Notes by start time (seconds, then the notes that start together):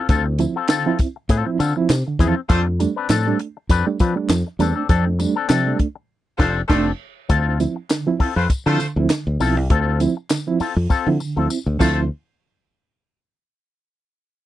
0.09 D2 D3 C4 F4 A4, kick, closed hi-hat, tambourine
0.26 C4 E4, muted clean electric guitar stroke
0.39 F3 C4 E4, muted clean electric guitar stroke, closed hi-hat, tambourine
0.56 C4 F4 A4
0.68 D3 C4 F4 A4, snare, clap, closed hi-hat, tambourine
0.86 F3 C4 E4
0.99 C4 E4, muted clean electric guitar stroke, kick, closed hi-hat, tambourine
1.16 muted clean electric guitar stroke
1.29 A2 C4 F4 A4, kick, closed hi-hat, tambourine
1.46 F3 C4 E4, muted clean electric guitar stroke
1.59 D3 C4 F4 A4, closed hi-hat, tambourine
1.76 F3 C4 E4
1.89 C3, muted clean electric guitar stroke, snare, clap, closed hi-hat, tambourine
2.07 D3, muted clean electric guitar stroke
2.19 E2 F3 C4 E4 F4 A4, kick, closed hi-hat, tambourine
2.36 muted clean electric guitar stroke
2.49 F2 F3 A3 C4 D4 F4 A4 C5, kick, closed hi-hat, tambourine
2.66 A3 D4, muted clean electric guitar stroke
2.80 G3 A3 D4, muted clean electric guitar stroke, closed hi-hat, tambourine
2.96 C4 D4 B4
3.09 A2 F3 C4 D4 A4, snare, clap, closed hi-hat, tambourine
3.27 G3 A3 D4
3.39 muted clean electric guitar stroke, closed hi-hat
3.57 muted clean electric guitar stroke
3.69 F2 C4 D4 B4, kick, closed hi-hat, tambourine
3.87 G3 A3 D4
3.99 F3 C4 D4 B4, kick, closed hi-hat, tambourine
4.16 G3 A3 D4, muted clean electric guitar stroke
4.29 F2 F3, muted clean electric guitar stroke, snare, clap, closed hi-hat, tambourine
4.47 muted clean electric guitar stroke
4.59 E2 G3 A3 C4 D4 A4, closed hi-hat, tambourine
4.76 A3 C4 D4 A4
4.89 F2 F3 C4 D4 A4, kick, closed hi-hat, tambourine
5.06 A3 D4, muted clean electric guitar stroke
5.19 G3 A3 D4, muted clean electric guitar stroke, closed hi-hat, tambourine
5.36 C4 D4 A4
5.48 C3 F3 C4 D4 A4, snare, clap, closed hi-hat, tambourine
5.67 G3 A3 D4
5.78 A3 D4, muted clean electric guitar stroke, kick, closed hi-hat
5.96 muted clean electric guitar stroke
6.38 F1 A3 C4 D4 F4 A4 C5, kick, snare, crash
6.68 F1 A3 C4 D4 F4 A4 C5, kick, snare, crash
7.29 D2 D3 C4 F4 A4, kick, closed hi-hat, tambourine
7.47 C4 E4
7.60 F3 C4 E4, closed hi-hat, tambourine
7.76 muted clean electric guitar stroke
7.89 D3, muted clean electric guitar stroke, snare, clap, closed hi-hat, tambourine
8.06 F3 C4 E4, muted clean electric guitar stroke
8.19 C4 E4 F4 A4, muted fingered electric bass stroke, kick, open hi-hat
8.36 F2 A3 C4 F4 B4 C5
8.50 muted fingered electric bass stroke, muted clean electric guitar stroke, kick, closed hi-hat, tambourine
8.66 D3 F3 A3 C4 E4 F4 A4 C5
8.80 D3, closed hi-hat, tambourine
8.96 D2 F3 C4 E4, muted clean electric guitar stroke
9.10 D3, muted clean electric guitar stroke, snare, clap, closed hi-hat, tambourine
9.27 D2, muted clean electric guitar stroke
9.40 B1 F3 C4 E4 F4 A4, open hi-hat, tambourine
9.57 C2 C4 E4, muted clean electric guitar stroke
9.70 D2 D3 C4 F4 A4, kick, closed hi-hat
9.88 C4 E4
10.00 F3 C4 E4, closed hi-hat, tambourine
10.17 muted clean electric guitar stroke
10.30 D3, muted clean electric guitar stroke, snare, clap, closed hi-hat, tambourine
10.47 F3 C4 E4
10.60 C4 E4 F4 A4, muted fingered electric bass stroke, open hi-hat, tambourine
10.76 F2, muted clean electric guitar stroke
10.90 C4 F4 A4, kick, tambourine
11.07 D3 F3 C4 E4
11.20 D3, muted clean electric guitar stroke, tambourine
11.36 D2 F3 C4 E4 F4 A4
11.50 C4 E4, muted clean electric guitar stroke, tambourine
11.66 D2 D3, muted clean electric guitar stroke
11.80 D2 F3 A3 C4 E4 F4 A4 C5, kick, crash, tambourine